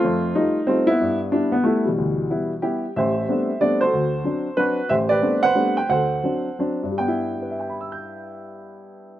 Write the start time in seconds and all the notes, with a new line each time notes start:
Already playing: C4 F4
0.04 F2 A3
0.35 G3 A3 D#4 F4
0.67 G3 A3 C4 D#4 F4
0.87 B3 E4
1.01 G2
1.32 G3 B3 D4 E4
1.52 B3
1.64 G3 A3 B3 E4
1.85 B2 E3 G3
1.98 D2
2.30 G3 B3 E4
2.62 G3 B3 E4 G4
2.96 A1 G4 C5 E5
3.29 G3 A3 B3 C4 D4
3.60 G3 A3 B3 C4 D4 D5
3.81 F#4 A4 C5
3.93 D2
4.24 F#3 C4 D4
4.57 F#3 C4 D4 F#4 B4
4.89 A1 G4 C5 E5
5.09 G4 B4 D5
5.22 G3 A3 B3 C4 D4
5.43 B4 C5 F#5
5.55 G3 A3 B3 C4 D4
5.77 G5
5.89 D2 A4 C5 F#5
6.23 F#3 C4 D4
6.59 F#3 C4 D4
6.83 G2
6.91 G3
6.98 B3 G5
7.08 E4
7.35 G4
7.42 B4
7.51 E5
7.60 G5
7.70 B5
7.81 E6
7.92 G6